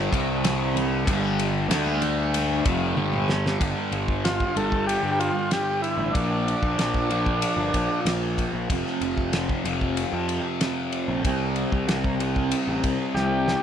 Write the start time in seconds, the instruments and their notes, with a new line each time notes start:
Already playing: distorted electric guitar G2 D3 G3, tanpura G2 D3 G3
0.12 picked electric bass C2, distorted electric guitar C3 G3 C4, kick, ride
0.44 snare, ride
0.55 tanpura D3
0.75 ride, high conga, low conga
1.06 picked electric bass G1, distorted electric guitar G2 D3 G3, kick, ride
1.16 tanpura G3
1.39 ride
1.69 picked electric bass D2, distorted electric guitar D3 A3 D4, snare, ride
1.77 tanpura G3
1.87 high conga
2.02 ride, low conga
2.34 ride, high conga
2.41 tanpura G2
2.65 picked electric bass F1, distorted electric guitar F2 C3 F3, kick, ride
2.96 picked electric bass G1, distorted electric guitar G2 D3 G3, high tom, high conga
3.02 tanpura D3
3.13 mid tom, high conga
3.28 snare, low conga
3.45 snare, low conga
3.60 picked electric bass G1, distorted electric guitar G2 D3 G3, kick, ride
3.91 picked electric bass G1, ride
4.08 kick
4.25 transistor combo organ F4, snare, ride
4.40 kick
4.56 picked electric bass G1, distorted electric guitar G2 D3 G3, transistor combo organ A4, ride
4.72 kick
4.87 transistor combo organ G4, ride
5.03 picked electric bass G2
5.12 transistor combo organ G4
5.19 transistor combo organ F4, ride
5.51 transistor combo organ G4, snare, ride
5.82 transistor combo organ E4, ride
5.98 picked electric bass A1
6.13 picked electric bass A#1, distorted electric guitar A#2 F3 A#3, transistor combo organ D4, kick, ride
6.48 ride
6.63 picked electric bass A#1, kick
6.79 picked electric bass A#1, snare, ride
6.94 kick
7.09 distorted electric guitar A#2 F3 A#3, ride
7.26 kick
7.42 ride
7.57 picked electric bass G1
7.74 picked electric bass A#1, kick, ride
8.05 picked electric bass A#1, snare, ride
8.38 kick, ride
8.53 picked electric bass A#1
8.70 picked electric bass F1, distorted electric guitar F2 C3 F3, kick, ride
8.86 snare
9.01 picked electric bass F1, ride
9.18 kick
9.33 snare, ride
9.49 kick
9.64 picked electric bass F1, distorted electric guitar C3 F3, ride
9.69 distorted electric guitar F2
9.81 kick
9.97 ride
10.13 picked electric bass F2
10.29 ride
10.61 snare, ride
10.92 ride
11.08 picked electric bass A#1
11.23 picked electric bass C2, distorted electric guitar C3 G3 C4, kick, ride
11.56 ride
11.72 picked electric bass C2, kick
11.88 picked electric bass C2, snare, ride
12.04 kick
12.19 distorted electric guitar C3 G3 C4, ride
12.36 kick
12.51 ride
12.68 picked electric bass A1
12.84 picked electric bass C2, kick, ride
13.14 picked electric bass C2, transistor combo organ G4, snare
13.48 snare